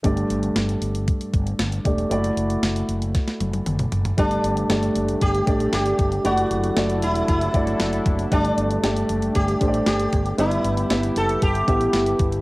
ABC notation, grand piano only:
X:1
M:4/4
L:1/8
Q:1/4=116
K:G
V:1 name="Grand piano"
[A,DGd]6- [A,DGd] [A,DGd] | [A,EFd]8 | [A,DGd]2 [A,DGd]3 [A,DGd]3 | [A,EFd]2 [A,EFd]3 [A,EFd]3 |
[A,DGd]2 [A,DGd]3 [A,DGcd]3 | [B,EGe]2 [B,EGe]3 [B,EGe]3 |]
V:2 name="Grand piano" clef=bass
G,,3 z4 z | z8 | G,,3 z4 z | z8 |
G,,3 z4 z | G,,3 z4 z |]